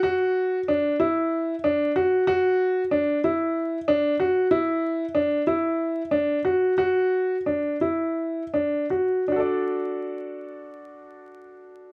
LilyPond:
\new Staff \with { instrumentName = "Grand piano" } { \time 7/8 \key d \major \tempo 4 = 93 fis'4 d'8 e'4 d'8 fis'8 | fis'4 d'8 e'4 d'8 fis'8 | e'4 d'8 e'4 d'8 fis'8 | fis'4 d'8 e'4 d'8 fis'8 |
<d' fis' a' d''>2.~ <d' fis' a' d''>8 | }